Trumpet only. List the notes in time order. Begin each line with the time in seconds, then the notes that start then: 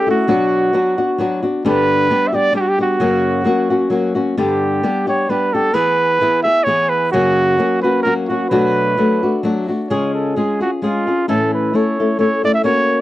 0.11 F#4
1.66 B4
2.28 E5
2.35 D5
2.56 G4
2.61 F#4
2.69 G4
2.81 F#4
4.37 G4
5.08 C#5
5.30 B4
5.53 A4
5.74 B4
6.43 E5
6.64 C#5
6.89 B4
7.12 F#4
7.82 B4
8.03 A#4
8.28 F#4
8.50 B4
9.90 C#5
10.14 A4
10.36 G#4
10.62 F#4
10.84 F4
11.29 A4
11.54 B4
11.76 C#5
12.20 C#5
12.45 D5
12.54 E5
12.65 C#5